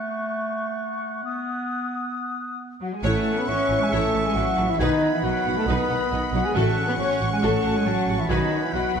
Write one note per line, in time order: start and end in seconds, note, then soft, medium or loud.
0.00 1.21 A3 medium
0.00 2.81 F#5 medium
0.00 1.21 C#6 medium
1.23 2.77 B3 medium
1.23 2.59 D#6 soft
2.80 2.91 F#3 medium
2.80 2.92 F#4 medium
2.80 2.86 F#5 medium
2.93 3.04 G#3 medium
2.93 3.04 G#4 medium
2.93 3.03 G#5 medium
3.03 3.12 A1 medium
3.03 4.76 E3 medium
3.03 3.36 A3 medium
3.03 4.76 C#4 medium
3.03 3.24 E4 medium
3.03 3.36 A4 loud
3.03 3.24 C#5 medium
3.03 4.76 E5 medium
3.03 3.93 F#5 loud
3.03 3.37 A5 medium
3.03 4.76 C#6 medium
3.37 3.48 B3 medium
3.37 3.48 B4 medium
3.37 3.48 B5 medium
3.47 3.55 A1 medium
3.47 3.80 C#4 medium
3.47 3.57 E4 medium
3.47 3.80 C#5 medium
3.47 3.56 E5 medium
3.47 3.81 C#6 medium
3.69 3.77 A1 medium
3.69 3.79 E4 medium
3.69 3.78 A5 medium
3.82 3.92 G#3 medium
3.82 3.93 G#4 medium
3.82 3.93 G#5 medium
3.92 4.00 A1 medium
3.92 4.25 A3 medium
3.92 4.13 E4 medium
3.92 4.25 A4 medium
3.92 4.12 C#5 medium
3.92 4.79 E5 medium
3.92 4.25 A5 medium
4.13 4.21 A1 medium
4.13 4.23 E4 medium
4.13 4.22 A5 medium
4.25 4.36 G#3 medium
4.25 4.36 G#4 medium
4.25 4.36 G#5 medium
4.33 4.43 A1 medium
4.33 4.69 F#3 medium
4.33 4.45 E4 medium
4.33 4.68 F#4 loud
4.33 4.44 E5 medium
4.33 4.69 F#5 medium
4.57 4.65 A1 medium
4.57 4.67 E4 medium
4.57 4.65 A5 medium
4.69 4.80 E3 medium
4.69 4.80 E4 loud
4.69 4.80 E5 medium
4.77 4.87 B1 medium
4.77 6.55 D#3 medium
4.77 5.12 D#3 medium
4.77 6.56 B3 medium
4.77 5.11 D#4 loud
4.77 5.01 D#4 medium
4.77 5.00 B4 loud
4.77 5.12 D#5 medium
4.77 8.25 F#5 medium
4.77 5.26 G#5 loud
4.77 6.51 B5 medium
5.13 5.17 E3 medium
5.13 5.18 E4 medium
5.13 5.18 E5 medium
5.22 5.31 B1 medium
5.22 5.56 F#3 medium
5.22 5.32 D#4 medium
5.22 5.55 F#4 medium
5.22 5.31 D#5 medium
5.22 5.56 F#5 medium
5.22 5.67 F#5 medium
5.45 5.53 B1 medium
5.45 5.55 D#4 medium
5.45 5.55 F#5 medium
5.57 5.68 A3 medium
5.57 5.68 A4 loud
5.57 5.68 A5 medium
5.66 5.75 B1 medium
5.66 6.11 B3 medium
5.66 5.88 D#4 medium
5.66 6.11 B4 loud
5.66 5.88 B4 medium
5.66 6.58 D#5 loud
5.66 6.11 B5 medium
5.89 5.97 B1 medium
5.89 5.99 D#4 medium
5.89 5.97 F#5 medium
6.10 6.19 B1 medium
6.10 6.20 D#4 medium
6.10 6.18 D#5 medium
6.32 6.40 B1 medium
6.32 6.44 F#3 medium
6.32 6.41 D#4 medium
6.32 6.44 F#4 medium
6.32 6.44 F#5 medium
6.32 6.42 F#5 medium
6.44 6.49 G#3 medium
6.44 6.56 G#4 medium
6.44 6.55 G#5 medium
6.54 6.62 A1 loud
6.54 7.17 A2 medium
6.54 9.00 F#3 medium
6.54 6.87 A3 medium
6.54 8.30 C#4 medium
6.54 6.75 F#4 medium
6.54 6.87 A4 loud
6.54 6.76 A4 loud
6.54 7.42 F#5 medium
6.54 6.88 A5 medium
6.54 8.26 C#6 medium
6.88 6.92 B3 medium
6.88 7.00 B4 loud
6.88 6.93 B5 medium
6.98 7.06 A1 medium
6.98 7.31 C#4 medium
6.98 7.06 F#4 medium
6.98 7.31 C#5 loud
6.98 7.07 C#5 medium
6.98 7.31 C#6 loud
7.20 7.28 A1 medium
7.20 7.29 F#4 medium
7.20 7.29 F#5 medium
7.32 7.42 G#3 medium
7.32 7.43 G#4 loud
7.32 7.37 G#5 medium
7.42 7.51 A1 loud
7.42 7.75 A3 medium
7.42 7.63 F#4 medium
7.42 7.76 A4 medium
7.42 7.63 A4 medium
7.42 7.85 F#5 medium
7.42 7.75 A5 medium
7.63 7.72 A1 medium
7.63 7.73 F#4 medium
7.63 7.71 F#5 medium
7.75 7.86 G#3 medium
7.75 7.87 G#4 medium
7.75 7.86 G#5 medium
7.85 7.94 A1 medium
7.85 8.19 F#3 medium
7.85 8.18 F#4 loud
7.85 7.95 F#4 medium
7.85 7.93 C#5 medium
7.85 8.19 F#5 medium
7.85 8.31 A5 medium
8.07 8.15 A1 medium
8.07 8.17 F#4 medium
8.07 8.17 F#5 medium
8.19 8.23 E3 medium
8.19 8.30 E4 medium
8.19 8.30 E5 medium
8.29 8.37 B1 loud
8.29 8.62 D#3 medium
8.29 9.00 B3 medium
8.29 8.62 D#4 loud
8.29 8.50 F#4 loud
8.29 8.50 B4 medium
8.29 8.63 D#5 medium
8.29 9.00 F#5 medium
8.29 8.74 G#5 loud
8.29 9.00 B5 medium
8.63 8.73 E3 medium
8.63 8.74 E4 medium
8.63 8.74 E5 medium
8.73 8.81 B1 medium
8.73 9.00 F#3 medium
8.73 8.81 F#4 medium
8.73 9.00 F#4 loud
8.73 8.83 D#5 medium
8.73 9.00 F#5 medium
8.95 9.00 B1 medium
8.95 9.00 F#4 medium
8.95 9.00 F#5 medium